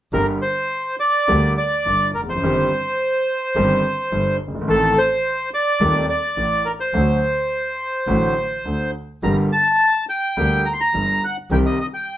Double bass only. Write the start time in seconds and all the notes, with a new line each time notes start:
0.13 G1
1.29 D2
1.86 G1
2.15 F1
2.43 G1
3.56 G1
4.13 G1
4.40 G1
4.68 A1
5.81 D#2
6.37 A1
6.94 D2
8.07 A1
8.65 D2
9.23 G1
10.37 D2
10.94 G1
11.51 C2